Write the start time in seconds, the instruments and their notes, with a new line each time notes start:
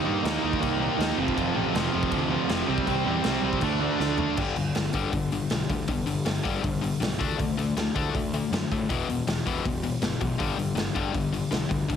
Already playing: distorted electric guitar D#3 A#3 D#4
0.05 picked electric bass G2, distorted electric guitar D#3 A#3 D#4
0.24 picked electric bass D#2, distorted electric guitar D#3 A#3 D#4, snare, crash
0.43 picked electric bass D#2, distorted electric guitar D#3 A#3 D#4
0.53 kick
0.61 picked electric bass C2, distorted electric guitar D#3 A#3 D#4, kick, crash
0.80 distorted electric guitar D#3 A#3 D#4
0.99 picked electric bass D#2, distorted electric guitar D#3 A#3 D#4, snare, crash
1.17 picked electric bass F1, distorted electric guitar F2 C3 F3
1.28 kick
1.37 picked electric bass F1, distorted electric guitar F2 C3 F3, kick, crash
1.55 picked electric bass A1, distorted electric guitar F2 C3 F3
1.75 picked electric bass F1, distorted electric guitar F2 C3 F3, snare, crash
1.93 picked electric bass F1, distorted electric guitar F2 C3 F3
2.03 kick
2.11 picked electric bass D2, distorted electric guitar F2 C3 F3, kick, crash
2.31 distorted electric guitar F2 C3 F3
2.49 picked electric bass F1, distorted electric guitar F2 C3 F3, snare, crash
2.68 picked electric bass C2, distorted electric guitar C3 G3 C4
2.78 kick
2.87 picked electric bass C2, distorted electric guitar C3 G3 C4, kick, crash
3.06 picked electric bass E2, distorted electric guitar C3 G3 C4
3.24 picked electric bass C2, distorted electric guitar C3 G3 C4, snare, crash
3.43 picked electric bass C2, distorted electric guitar C3 G3 C4
3.53 kick
3.61 picked electric bass D2, distorted electric guitar D3 A3 D4, kick, crash
3.82 distorted electric guitar D3 A3 D4
3.99 picked electric bass D2, distorted electric guitar D3 A3 D4, snare
4.18 distorted electric guitar D3 A3 D4, floor tom
4.36 picked electric bass G1, distorted electric guitar G2 D3 G3, kick, crash
4.56 picked electric bass G1, distorted electric guitar G2 D3, open hi-hat
4.75 picked electric bass G1, distorted electric guitar G2 D3, snare, open hi-hat
4.93 picked electric bass G1, distorted electric guitar G2 D3 G3, kick, open hi-hat
5.12 picked electric bass G1, distorted electric guitar G2 D3, kick, open hi-hat
5.32 distorted electric guitar G2 D3, open hi-hat
5.50 picked electric bass B1, distorted electric guitar G2 D3, snare, open hi-hat
5.70 picked electric bass D2, distorted electric guitar G2 D3, kick, open hi-hat
5.88 picked electric bass G1, distorted electric guitar G2 D3, kick, open hi-hat
6.06 picked electric bass G1, distorted electric guitar G2 D3, open hi-hat
6.25 picked electric bass G1, distorted electric guitar G2 D3, snare, open hi-hat
6.43 picked electric bass G1, distorted electric guitar G2 D3 G3, kick, open hi-hat
6.63 picked electric bass G1, distorted electric guitar G2 D3, kick, open hi-hat
6.81 distorted electric guitar G2 D3, open hi-hat
7.00 picked electric bass B1, distorted electric guitar G2 D3, snare, open hi-hat
7.19 picked electric bass D2, distorted electric guitar D3 A3 D4, kick, open hi-hat
7.37 picked electric bass D2, distorted electric guitar D3 A3, kick, open hi-hat
7.57 picked electric bass D2, distorted electric guitar D3 A3, open hi-hat
7.77 picked electric bass D2, distorted electric guitar D3 A3, snare, open hi-hat
7.95 picked electric bass D2, distorted electric guitar D3 A3 D4, kick, open hi-hat
8.15 picked electric bass D2, distorted electric guitar D3 A3, kick, open hi-hat
8.34 distorted electric guitar D3 A3, open hi-hat
8.51 picked electric bass F#2, distorted electric guitar D3 A3, snare, open hi-hat
8.72 picked electric bass A2, distorted electric guitar D3 A3, kick, open hi-hat
8.89 picked electric bass E1, distorted electric guitar E2 B2 E3, kick, open hi-hat
9.08 picked electric bass E1, distorted electric guitar E2 B2, open hi-hat
9.27 picked electric bass E1, distorted electric guitar E2 B2, snare, open hi-hat
9.46 picked electric bass E1, distorted electric guitar E2 B2 E3, kick, open hi-hat
9.65 picked electric bass E1, distorted electric guitar E2 B2, kick, open hi-hat
9.83 distorted electric guitar E2 B2, open hi-hat
10.02 picked electric bass G1, distorted electric guitar E2 B2, snare, open hi-hat
10.21 picked electric bass B1, distorted electric guitar E2 B2, kick, open hi-hat
10.38 picked electric bass G1, distorted electric guitar G2 D3 G3, kick, open hi-hat
10.57 picked electric bass G1, distorted electric guitar G2 D3, open hi-hat
10.75 picked electric bass G1, distorted electric guitar G2 D3, snare, open hi-hat
10.94 picked electric bass G1, distorted electric guitar G2 D3 G3, kick, open hi-hat
11.13 picked electric bass G1, distorted electric guitar G2 D3, kick, open hi-hat
11.33 distorted electric guitar G2 D3, open hi-hat
11.51 picked electric bass B1, distorted electric guitar G2 D3, snare, open hi-hat
11.69 picked electric bass D2, distorted electric guitar G2 D3, kick, open hi-hat
11.89 picked electric bass G1, distorted electric guitar G2 D3, kick, open hi-hat